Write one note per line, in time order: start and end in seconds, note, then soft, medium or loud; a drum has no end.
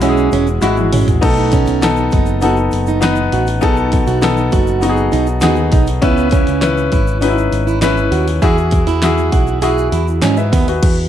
0.00 0.28 B1 medium
0.00 1.25 E3 medium
0.00 0.61 G#3 loud
0.00 0.31 C#4 medium
0.00 0.62 E4 medium
0.00 0.02 F#4 loud
0.00 0.62 F#4 medium
0.00 0.09 G#4 loud
0.00 open hi-hat medium
0.00 shaker medium
0.09 0.62 G#4 medium
0.17 shaker soft
0.32 0.60 E1 medium
0.32 0.47 C#4 medium
0.32 open hi-hat medium
0.32 shaker soft
0.47 shaker medium
0.61 0.90 G#1 loud
0.61 1.18 G#3 medium
0.61 1.18 E4 medium
0.61 0.77 E4 medium
0.61 1.19 F#4 medium
0.61 snare medium
0.61 open hi-hat medium
0.61 shaker medium
0.76 high tom medium
0.76 shaker soft
0.93 1.21 A1 medium
0.93 1.07 C#4 medium
0.93 mid tom medium
0.93 open hi-hat medium
1.08 floor tom medium
1.08 open hi-hat soft
1.08 shaker soft
1.21 2.08 B2 medium
1.21 1.52 A3 medium
1.21 1.78 B3 loud
1.21 1.78 D#4 loud
1.21 1.79 A4 loud
1.21 kick loud
1.21 crash medium
1.21 shaker medium
1.37 shaker soft
1.52 1.81 C#4 medium
1.52 kick medium
1.52 open hi-hat medium
1.52 shaker medium
1.67 2.09 B1 medium
1.67 open hi-hat medium
1.67 shaker soft
1.81 2.38 B3 medium
1.81 2.39 D#4 medium
1.81 2.39 A4 loud
1.81 snare loud
1.81 open hi-hat medium
1.81 shaker medium
1.96 shaker medium
2.11 2.69 F#1 loud
2.11 2.41 D#4 medium
2.11 kick medium
2.11 open hi-hat medium
2.11 shaker soft
2.26 shaker medium
2.41 2.98 B3 medium
2.41 2.99 D#4 medium
2.41 2.57 F#4 medium
2.41 2.99 A4 medium
2.41 open hi-hat medium
2.41 shaker medium
2.57 shaker soft
2.71 3.28 F#1 medium
2.71 open hi-hat medium
2.71 shaker soft
2.87 3.02 D#4 medium
2.87 shaker medium
3.01 3.58 B3 medium
3.01 3.58 D#4 medium
3.01 3.17 D#4 medium
3.01 3.59 B4 loud
3.01 snare loud
3.01 open hi-hat medium
3.01 shaker medium
3.16 shaker medium
3.32 3.60 A1 medium
3.32 3.47 F#4 medium
3.32 open hi-hat medium
3.47 open hi-hat medium
3.47 shaker soft
3.61 4.05 B1 medium
3.61 4.48 B2 medium
3.61 4.18 B3 loud
3.61 4.18 D#4 medium
3.61 3.77 G#4 loud
3.61 4.19 A4 loud
3.61 kick loud
3.61 open hi-hat medium
3.61 shaker medium
3.77 shaker medium
3.92 kick medium
3.92 open hi-hat medium
3.92 shaker medium
4.07 4.49 B1 loud
4.07 4.22 F#4 medium
4.07 open hi-hat medium
4.07 shaker soft
4.22 4.78 B3 medium
4.22 4.78 D#4 medium
4.22 4.79 A4 loud
4.22 snare loud
4.22 open hi-hat medium
4.22 shaker medium
4.37 shaker soft
4.52 5.09 F#1 medium
4.52 4.81 F#4 medium
4.52 kick medium
4.52 open hi-hat medium
4.52 shaker soft
4.67 shaker medium
4.81 5.38 B3 medium
4.81 5.39 D#4 medium
4.81 5.11 D#4 medium
4.81 4.89 F#4 medium
4.81 open hi-hat medium
4.81 shaker medium
4.89 5.42 G#4 loud
4.97 shaker soft
5.12 5.41 B1 loud
5.12 5.27 D#4 medium
5.12 open hi-hat medium
5.12 shaker soft
5.27 shaker medium
5.41 5.71 D#2 loud
5.41 5.98 B3 medium
5.41 5.99 D#4 medium
5.41 5.57 F#4 medium
5.41 5.99 G#4 medium
5.41 snare loud
5.41 open hi-hat medium
5.41 shaker medium
5.56 shaker medium
5.72 6.00 B1 medium
5.72 5.87 D#4 medium
5.72 kick medium
5.72 open hi-hat medium
5.87 open hi-hat medium
5.87 shaker soft
6.02 6.44 C#2 loud
6.02 6.88 C#3 medium
6.02 6.31 B3 medium
6.02 6.58 C#4 loud
6.02 6.59 E4 loud
6.02 6.59 B4 loud
6.02 kick loud
6.02 open hi-hat medium
6.02 shaker medium
6.17 shaker medium
6.31 6.61 C#4 medium
6.31 kick medium
6.31 open hi-hat medium
6.31 shaker medium
6.47 6.89 C#2 loud
6.47 open hi-hat medium
6.47 shaker soft
6.61 7.18 C#4 medium
6.61 7.18 E4 medium
6.61 7.19 B4 loud
6.61 snare loud
6.61 open hi-hat medium
6.61 shaker medium
6.78 shaker medium
6.92 7.48 G#1 medium
6.92 7.21 E4 medium
6.92 kick medium
6.92 open hi-hat medium
6.92 shaker soft
7.07 shaker medium
7.21 7.78 C#4 medium
7.21 7.29 D#4 medium
7.21 7.36 F#4 medium
7.21 7.79 B4 medium
7.21 open hi-hat loud
7.21 shaker medium
7.28 7.82 E4 medium
7.38 shaker soft
7.52 8.08 G#1 medium
7.52 open hi-hat medium
7.52 shaker soft
7.67 7.81 E4 medium
7.67 shaker medium
7.82 8.38 C#4 medium
7.82 7.97 E4 medium
7.82 8.39 E4 medium
7.82 8.39 B4 loud
7.82 snare loud
7.82 open hi-hat medium
7.82 shaker medium
7.97 shaker medium
8.12 8.40 D#2 medium
8.12 8.26 F#4 medium
8.12 open hi-hat medium
8.28 open hi-hat medium
8.28 shaker soft
8.42 8.84 E2 medium
8.42 9.29 E3 medium
8.42 8.98 E4 loud
8.42 8.99 F#4 medium
8.42 8.57 G#4 loud
8.42 8.99 G#4 loud
8.42 kick loud
8.42 open hi-hat medium
8.42 shaker medium
8.58 shaker soft
8.71 kick medium
8.71 open hi-hat medium
8.71 shaker medium
8.87 9.29 E2 medium
8.87 9.02 E4 medium
8.87 open hi-hat medium
8.87 shaker soft
9.02 9.58 E4 medium
9.02 9.59 F#4 medium
9.02 9.60 G#4 loud
9.02 snare loud
9.02 open hi-hat medium
9.02 shaker medium
9.18 shaker medium
9.32 9.89 B1 medium
9.32 9.61 F#4 medium
9.32 kick medium
9.32 open hi-hat medium
9.32 shaker soft
9.47 shaker medium
9.62 10.18 E4 medium
9.62 10.19 F#4 medium
9.62 9.91 G#4 medium
9.62 10.19 G#4 medium
9.62 open hi-hat medium
9.62 shaker medium
9.78 shaker soft
9.92 10.20 E2 loud
9.92 10.07 E4 medium
9.92 open hi-hat medium
9.92 shaker medium
10.07 shaker medium
10.22 10.51 G#2 medium
10.22 10.36 C#4 medium
10.22 10.37 D#5 medium
10.22 10.37 G#5 medium
10.22 snare loud
10.22 open hi-hat medium
10.22 shaker medium
10.37 10.66 B4 medium
10.37 10.66 E5 medium
10.37 shaker medium
10.52 10.80 D#2 medium
10.52 10.67 B3 medium
10.52 kick medium
10.52 snare soft
10.52 open hi-hat medium
10.52 shaker soft
10.68 10.97 F#4 medium
10.68 10.96 B4 medium
10.68 open hi-hat soft
10.68 shaker soft
10.83 11.09 E2 medium
10.83 kick loud
10.83 closed hi-hat medium
10.83 crash medium